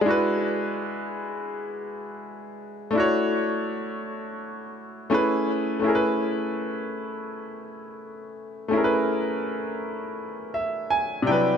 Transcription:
\new Staff \with { instrumentName = "Grand piano" } { \time 4/4 \key a \major \tempo 4 = 83 << { r1 | r1 | r1 | r2 r8 e''8 gis''8 g''8 | } \\ { <gis d' e' fis' b'>1 | <a d' e' fis' cis''>2. <a cis' e' gis' b'>4 | <a cis' e' gis' bes' b'>1 | <a cis' e' gis' bes' b'>2.~ <a cis' e' gis' bes' b'>8 <c fis g d' e' b'>8 | } >> }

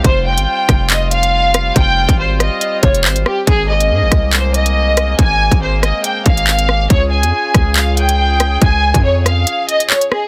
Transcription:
<<
  \new Staff \with { instrumentName = "Violin section" } { \time 4/4 \key aes \major \tempo 4 = 140 c''8 g''4. ees''8 f''4. | g''4 c''8 ees''4 des''8 c''8 g'8 | aes'8 ees''4. c''8 ees''4. | aes''4 c''8 ees''8 g''8 f''4. |
des''8 aes''4. f''8 g''4. | aes''4 des''8 f''4 ees''8 des''8 aes'8 | }
  \new Staff \with { instrumentName = "Brass ensemble" } { \time 4/4 \key aes \major <g c' f'>1~ | <g c' f'>1 | <aes bes>1~ | <aes bes>1 |
<des des' f' aes'>1~ | <des des' f' aes'>1 | }
  \new Staff \with { instrumentName = "808-style bass" } { \clef bass \time 4/4 \key aes \major f,,8. aes,,16 r8 f,,2~ f,,8 | f,,8. aes,,4 r8. f,,8 aes,,8 r8 | aes,,4 aes,16 aes,,16 c,2~ c,8 | aes,,8. aes,,4 r8. aes,,4. |
des,8. f,16 r8 des,2~ des,8 | des,8. f,4~ f,16 r2 | }
  \new DrumStaff \with { instrumentName = "Drums" } \drummode { \time 4/4 <hh bd>8. hh16 r8 <hh bd ss>8 <hc hh>8 hh16 hh16 r8 <hh ss>8 | <hh bd>8. <hh bd>16 r8 <hh ss>8 hh8 <hh bd>16 hh16 hc16 hh16 ss8 | <hh bd>8. hh16 r8 <hh bd ss>8 <hc hh>8 hh16 hh16 r8 <hh ss>8 | <hh bd>8. <hh bd>16 r8 <hh ss>8 hh8 <hh bd>16 hh16 hc16 hh16 ss8 |
<hh bd>8. hh16 r8 <hh bd ss>8 <hc hh>8 hh16 hh16 r8 <hh ss>8 | <hh bd>8. <hh bd>16 r8 <hh ss>8 hh8 hh16 hh16 hc16 hh16 ss8 | }
>>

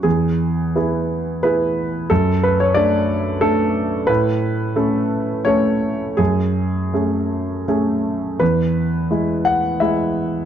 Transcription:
\new Staff \with { instrumentName = "Grand piano" } { \time 3/4 \key e \mixolydian \tempo 4 = 87 << { gis'2 b'4 | a'8 b'16 cis''16 d''4 a'4 | b'2 cis''4 | gis'2 r4 |
b'4. fis''8 e''4 | } \\ { e,4 <b e' gis'>4 <b e' gis'>4 | fis,4 <a d' a'>4 <a d'>4 | a,4 <a cis' a'>4 <a cis' a'>4 | fis,4 <a cis' gis'>4 <a cis' gis'>4 |
e,4 <gis e'>4 <gis e'>4 | } >> }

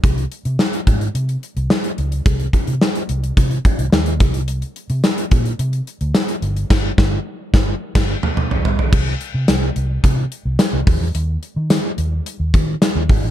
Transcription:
<<
  \new Staff \with { instrumentName = "Fingered electric bass" } { \clef bass \time 4/4 \key c \minor \tempo 4 = 108 c,8 r16 c16 r8 aes,8 c8 r16 c,16 r8 des,8 | c,8 r16 c16 r8 c,8 c8 r16 c,16 ees,8 c,8~ | c,8 r16 c16 r8 bes,8 c8 r16 d,16 r8 g,,8 | g,,8 g,,8 r8 g,,8 r16 g,,8 r4 r16 |
c,8 r16 c16 c,8 c,8 c8 r16 c,16 r16 c,16 ees,16 e,16 | ees,8 r16 ees8 r16 ees,8 r16 ees,16 ees8 r16 ees,16 aes,,16 a,,16 | }
  \new DrumStaff \with { instrumentName = "Drums" } \drummode { \time 4/4 <hh bd>16 hh16 hh16 hh16 sn16 hh16 <hh bd>16 hh16 hh16 hh16 hh16 hh16 sn16 hh16 hh16 hh16 | <hh bd>16 hh16 <hh bd>16 hh16 sn16 hh16 hh16 hh16 <hh bd>16 hh16 <hh bd>16 hh16 sn16 hh16 <hh bd>16 hh16 | hh16 hh16 hh16 hh16 <sn tamb>16 hh16 <hh bd>16 hh16 hh16 hh16 hh16 hh16 <sn tamb>16 hh16 hh16 hh16 | <cymc bd sn>8 <bd sn>8 r8 <bd sn>8 r16 <cymc bd sn>8 toml16 toml16 tomfh16 tomfh16 tomfh16 |
<cymc bd>8 hh8 <hh sn tamb>8 hh8 <hh bd>8 hh8 <hh sn tamb>8 <hho bd>8 | hh8 hh8 <hh sn tamb>8 hh8 hh8 <hh bd>8 <hh sn tamb>8 <hho bd>8 | }
>>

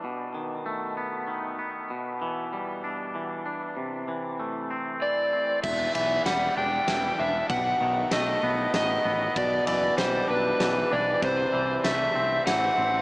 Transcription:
<<
  \new Staff \with { instrumentName = "Electric slide guitar" } { \time 3/4 \key e \minor \tempo 4 = 96 r2. | r2. | r2 d''4 | e''8 e''8 fis''8 g''4 e''8 |
fis''4 dis''4 dis''4 | d''8 d''8 c''8 b'4 d''8 | c''4 e''4 fis''4 | }
  \new Staff \with { instrumentName = "Clean electric guitar" } { \clef bass \time 3/4 \key e \minor b,8 dis8 a8 b8 dis8 b8 | b,8 e8 g8 d'8 e8 d'8 | c8 e8 a8 c'8 e8 c'8 | e,8 e8 g8 d'8 e8 d'8 |
b,8 dis8 a8 b8 dis8 b8 | b,8 e8 g8 d'8 e8 d'8 | c8 e8 a8 c'8 e8 c'8 | }
  \new Staff \with { instrumentName = "Picked electric bass" } { \clef bass \time 3/4 \key e \minor r2. | r2. | r2. | e,,8 b,,8 e,,8 e,,8 e,,8 e,,8 |
b,,8 b,,8 b,,8 b,,8 a,,8 a,,8 | b,,8 fis,,8 b,,8 b,,8 b,,8 b,,8 | c,8 c,8 c,8 c,8 a,,8 a,,8 | }
  \new DrumStaff \with { instrumentName = "Drums" } \drummode { \time 3/4 r4 r4 r4 | r4 r4 r4 | r4 r4 r4 | <cymc bd>8 cymr8 <cymr sn>4 <cymr sn>4 |
<bd cymr>4 <cymr sn>4 <cymr sn>4 | <bd cymr>8 cymr8 <cymr sn>4 <cymr sn>4 | <bd cymr>4 <cymr sn>4 <cymr sn>4 | }
>>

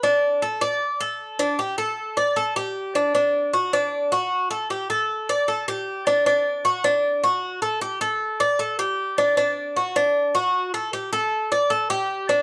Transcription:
\new Staff \with { instrumentName = "Cuban tres" } { \time 4/4 \key d \mixolydian \tempo 4 = 154 d'4 a'8 d''4 a'4 d'8 | g'8 a'4 d''8 a'8 g'4 d'8 | d'4 fis'8 d'4 fis'4 a'8 | g'8 a'4 d''8 a'8 g'4 d'8 |
d'4 fis'8 d'4 fis'4 a'8 | g'8 a'4 d''8 a'8 g'4 d'8 | d'4 fis'8 d'4 fis'4 a'8 | g'8 a'4 d''8 a'8 g'4 d'8 | }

